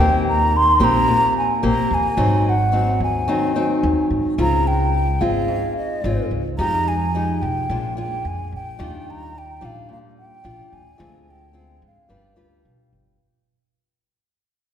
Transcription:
0.00 0.76 D#2 loud
0.00 1.05 D#3 medium
0.00 0.52 A#3 medium
0.00 0.52 C4 medium
0.00 0.53 G4 medium
0.00 0.27 G5 medium
0.28 0.58 A#5 medium
0.57 0.85 C6 loud
0.80 1.06 A#1 medium
0.80 1.58 A#3 medium
0.80 1.58 C4 medium
0.80 1.59 G4 medium
0.84 1.37 A#5 loud
1.08 2.15 A#2 medium
1.38 1.62 G#5 medium
1.63 1.76 A#1 medium
1.63 2.16 A#3 soft
1.63 2.16 C4 medium
1.63 2.16 G4 medium
1.63 1.96 A#5 medium
1.91 2.16 D#2 medium
1.91 2.51 G#5 medium
2.17 2.96 G#1 loud
2.17 3.25 G#2 medium
2.17 2.53 F#3 medium
2.17 2.53 C4 medium
2.17 2.53 D#4 medium
2.49 3.02 F#5 medium
2.72 3.23 F#3 medium
2.72 3.24 C4 soft
2.72 3.24 D#4 medium
3.00 3.26 D#2 medium
3.00 4.08 G#5 medium
3.28 4.35 D#3 medium
3.28 3.51 F#3 medium
3.28 3.51 C4 medium
3.28 3.52 D#4 medium
3.56 4.34 F#3 medium
3.56 4.34 C4 medium
3.56 4.34 D#4 medium
3.83 3.96 D#2 loud
4.10 4.36 G#2 medium
4.38 5.17 C#2 loud
4.38 5.46 C#3 medium
4.38 4.93 G#3 medium
4.38 4.93 C4 medium
4.38 4.94 F4 medium
4.38 4.69 A#5 loud
4.67 5.23 G5 medium
5.21 5.47 G#1 medium
5.21 5.99 G#3 medium
5.21 5.99 C4 medium
5.21 5.99 F4 medium
5.21 5.76 F5 loud
5.48 6.56 G#2 medium
5.78 6.28 D#5 medium
6.04 6.17 G#1 loud
6.04 6.41 G#3 soft
6.04 6.41 C4 soft
6.04 6.41 F4 medium
6.31 6.57 C#2 medium
6.59 7.37 F2 loud
6.59 7.66 F3 medium
6.59 6.94 G#3 medium
6.59 6.95 D#4 medium
6.59 6.95 G4 medium
6.59 6.90 A#5 loud
6.88 7.43 G#5 loud
7.15 7.67 G#3 soft
7.15 7.67 D#4 medium
7.15 7.68 G4 medium
7.42 7.55 C2 medium
7.42 7.97 G5 medium
7.69 8.20 A#1 loud
7.69 8.77 A#2 medium
7.69 7.92 G#3 medium
7.69 7.93 D4 medium
7.69 7.93 F4 medium
7.97 8.75 G#3 medium
7.97 8.75 D4 medium
7.97 8.75 F4 medium
7.97 8.29 G5 medium
8.25 8.37 F2 medium
8.25 8.53 G#5 medium
8.52 8.78 A#1 medium
8.52 9.12 G5 medium
8.79 9.58 D#2 loud
8.79 9.86 D#3 medium
8.79 9.34 G3 medium
8.79 9.34 D4 medium
8.79 9.34 F4 medium
9.10 9.40 A#5 medium
9.38 9.67 G5 medium
9.61 9.87 A#1 medium
9.61 10.40 G3 medium
9.61 10.40 D4 medium
9.61 10.40 F4 medium
9.65 9.91 F5 medium
9.89 10.96 A#2 medium
9.89 9.99 F5 medium
10.19 10.75 G5 medium
10.44 10.57 A#1 loud
10.44 10.81 G3 medium
10.44 10.81 D4 medium
10.44 10.82 F4 medium
10.72 10.98 D#2 medium
10.72 11.32 G#5 medium
10.98 11.78 D2 loud
10.98 12.06 D3 medium
10.98 11.49 G#3 medium
10.98 11.49 C4 medium
10.98 11.50 F4 medium
11.30 11.84 G5 medium
11.53 12.05 G#3 medium
11.53 12.05 C4 medium
11.53 12.05 F4 medium
11.82 11.95 G#2 medium
11.87 12.91 F5 medium
12.09 12.35 G1 loud
12.09 13.17 G3 medium
12.09 12.32 D4 medium
12.09 12.33 F4 medium
12.09 12.33 B4 medium
12.36 12.62 D2 medium
12.36 13.15 D4 medium
12.36 13.15 F4 medium
12.36 13.15 B4 medium
12.65 12.90 B1 medium
12.93 13.17 G1 medium

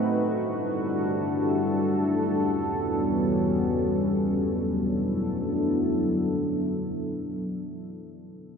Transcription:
0.00 4.31 F#4 medium
0.06 2.18 G3 medium
0.06 2.18 D4 medium
0.06 2.18 E4 medium
0.06 4.31 A4 medium
2.20 4.33 E2 medium
2.20 4.32 G3 medium
2.20 4.33 B3 medium
2.20 4.32 C#4 medium
4.35 7.65 F#3 medium
4.35 7.65 B3 medium
4.35 7.65 D4 medium
4.35 7.65 E4 medium
4.35 7.65 A4 medium

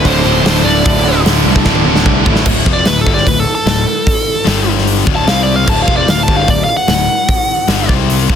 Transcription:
0.00 0.66 D2 medium
0.00 0.63 A2 medium
0.00 0.63 D3 loud
0.00 2.43 D4 medium
0.00 2.43 A4 medium
0.00 2.42 E5 medium
0.04 0.23 D1 medium
0.04 0.25 D2 loud
0.04 0.24 A2 loud
0.04 0.26 D3 loud
0.04 0.67 C5 loud
0.04 kick loud
0.04 open hi-hat medium
0.24 0.42 D1 loud
0.24 0.44 D2 medium
0.24 0.44 A2 loud
0.24 0.46 D3 loud
0.44 0.62 D1 medium
0.44 0.64 D2 medium
0.44 0.64 A2 medium
0.44 0.65 D3 loud
0.44 snare loud
0.44 open hi-hat medium
0.64 0.82 D1 medium
0.64 0.85 D2 medium
0.64 0.85 A2 medium
0.64 0.87 D3 medium
0.64 1.21 D5 medium
0.86 1.03 D1 medium
0.86 1.03 D2 medium
0.86 1.05 A2 loud
0.86 1.05 D3 loud
0.86 kick loud
0.86 open hi-hat medium
1.04 1.23 D1 medium
1.04 1.23 D2 medium
1.04 1.24 A2 loud
1.04 1.25 D3 medium
1.25 1.43 D1 medium
1.25 1.44 D2 medium
1.25 1.45 A2 loud
1.25 1.45 D3 loud
1.25 snare loud
1.25 open hi-hat medium
1.45 1.63 C2 medium
1.45 1.65 D2 medium
1.45 1.65 A2 medium
1.45 1.66 D3 medium
1.56 kick medium
1.65 1.84 D1 medium
1.65 1.85 D2 loud
1.65 1.86 A2 loud
1.65 1.86 D3 loud
1.65 kick loud
1.65 snare medium
1.75 high tom medium
1.85 2.03 D1 loud
1.85 2.04 D2 medium
1.85 2.05 A2 medium
1.85 2.06 D3 loud
1.95 snare medium
2.05 2.24 C2 medium
2.05 2.24 D2 medium
2.05 2.25 A2 medium
2.05 2.26 D3 medium
2.05 kick medium
2.23 2.44 A1 loud
2.23 2.44 D2 medium
2.23 2.45 A2 medium
2.23 2.43 D3 loud
2.23 kick loud
2.27 2.45 D3 loud
2.35 snare medium
2.46 2.64 D1 medium
2.46 2.65 D2 loud
2.46 2.66 A2 medium
2.46 2.66 D3 loud
2.46 kick loud
2.46 crash loud
2.66 2.84 F1 medium
2.66 2.85 F2 medium
2.66 2.86 C3 loud
2.66 2.86 F3 medium
2.66 kick loud
2.73 2.86 D5 medium
2.85 3.04 D1 medium
2.85 3.03 D2 medium
2.85 3.03 A2 medium
2.85 3.01 B4 medium
2.85 snare medium
2.85 open hi-hat medium
3.01 3.13 A4 medium
3.06 3.24 G1 medium
3.06 3.25 G2 medium
3.06 3.26 D3 medium
3.06 3.26 G3 medium
3.06 kick medium
3.14 3.26 D5 medium
3.14 snare soft
3.27 3.45 D1 medium
3.27 3.42 D2 medium
3.27 3.42 A2 medium
3.27 3.40 B4 medium
3.27 kick medium
3.27 open hi-hat medium
3.40 3.52 A4 medium
3.55 4.71 A4 medium
3.66 3.85 D1 medium
3.66 3.82 D2 medium
3.66 3.82 A2 medium
3.66 snare loud
3.66 open hi-hat medium
4.07 kick loud
4.07 open hi-hat medium
4.45 5.03 G1 medium
4.45 5.05 G2 medium
4.45 5.06 D3 medium
4.45 5.06 G3 medium
4.45 snare loud
4.45 open hi-hat medium
4.78 snare soft
4.87 open hi-hat medium
5.05 5.25 D1 medium
5.05 5.25 D2 medium
5.05 5.26 A2 loud
5.05 5.26 D3 medium
5.05 kick loud
5.15 5.28 A5 loud
5.26 5.64 C2 medium
5.26 5.65 C3 loud
5.26 5.66 G3 medium
5.26 5.66 C4 loud
5.26 5.43 F5 medium
5.26 snare loud
5.26 open hi-hat medium
5.43 5.56 D5 medium
5.56 5.68 F5 medium
5.65 5.86 D1 medium
5.65 5.86 D2 medium
5.65 5.86 A2 medium
5.65 5.86 D3 loud
5.65 kick loud
5.65 crash loud
5.69 5.81 A5 loud
5.82 5.94 F5 medium
5.86 6.06 F1 medium
5.86 6.06 F2 loud
5.86 6.06 C3 medium
5.86 6.07 F3 loud
5.86 kick loud
5.97 6.10 D5 medium
6.07 6.26 D1 medium
6.07 6.23 D2 medium
6.07 6.24 A2 medium
6.07 6.22 F5 medium
6.07 snare loud
6.07 open hi-hat medium
6.23 6.47 G2 medium
6.23 6.35 A5 medium
6.27 6.47 G1 medium
6.27 6.47 D3 medium
6.27 6.47 G3 medium
6.27 kick medium
6.36 6.50 F5 loud
6.48 6.67 D1 medium
6.48 6.64 D2 medium
6.48 6.64 A2 medium
6.48 6.62 D5 loud
6.48 kick medium
6.48 open hi-hat medium
6.64 6.76 F5 medium
6.77 7.93 F#5 medium
6.88 7.07 D1 medium
6.88 7.04 D2 medium
6.88 7.04 A2 medium
6.88 snare loud
6.88 open hi-hat medium
7.29 kick loud
7.29 open hi-hat medium
7.68 7.87 G1 medium
7.68 7.88 G2 medium
7.68 7.88 D3 loud
7.68 7.89 G3 medium
7.68 snare loud
7.68 open hi-hat medium
7.89 8.26 C2 loud
7.89 8.28 C3 medium
7.89 8.28 G3 medium
7.89 8.29 C4 loud
7.89 kick medium
8.10 open hi-hat medium
8.29 8.36 F1 medium
8.29 8.36 F2 medium
8.29 8.36 C3 medium
8.29 8.36 F3 medium
8.29 kick loud

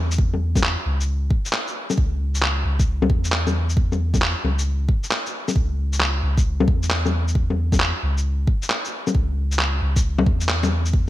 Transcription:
0.00 0.76 E2 medium
0.11 shaker medium
0.18 kick loud
0.34 low bongo soft
0.56 kick loud
0.56 low bongo soft
0.56 shaker medium
0.64 clap loud
0.85 1.29 C#2 loud
1.01 shaker medium
1.30 kick loud
1.45 shaker medium
1.53 clap loud
1.68 shaker soft
1.90 low bongo medium
1.90 shaker medium
1.98 2.64 C#2 loud
1.98 kick loud
2.35 shaker medium
2.43 clap loud
2.65 3.11 C#2 loud
2.79 kick loud
2.79 shaker medium
3.02 low bongo medium
3.09 4.34 E2 medium
3.09 kick loud
3.24 shaker medium
3.32 clap loud
3.47 low bongo medium
3.47 shaker soft
3.69 shaker medium
3.77 kick loud
3.92 low bongo soft
3.92 shaker soft
4.14 kick loud
4.14 low bongo soft
4.14 shaker medium
4.22 clap loud
4.44 4.88 C#2 loud
4.44 low bongo soft
4.59 shaker medium
4.89 kick loud
5.04 shaker medium
5.11 clap loud
5.26 shaker soft
5.48 low bongo soft
5.48 shaker medium
5.55 6.22 C#2 medium
5.55 kick loud
5.93 shaker soft
6.01 clap loud
6.23 6.69 C#2 loud
6.38 kick loud
6.38 shaker medium
6.60 low bongo medium
6.68 7.93 E2 medium
6.68 kick loud
6.83 shaker soft
6.91 clap loud
7.06 low bongo medium
7.06 shaker soft
7.28 shaker medium
7.35 kick loud
7.50 low bongo soft
7.72 kick loud
7.72 low bongo soft
7.72 shaker medium
7.80 clap loud
8.03 8.46 C#2 loud
8.18 shaker soft
8.47 kick loud
8.62 shaker soft
8.70 clap loud
8.85 shaker soft
9.07 low bongo soft
9.07 shaker medium
9.15 9.81 C#2 loud
9.15 kick loud
9.52 shaker medium
9.59 clap loud
9.82 10.28 C#2 loud
9.96 kick loud
9.96 shaker medium
10.19 low bongo medium
10.26 11.09 E2 medium
10.26 kick loud
10.41 shaker medium
10.49 clap medium
10.63 low bongo medium
10.63 shaker soft
10.86 shaker medium
10.93 kick loud

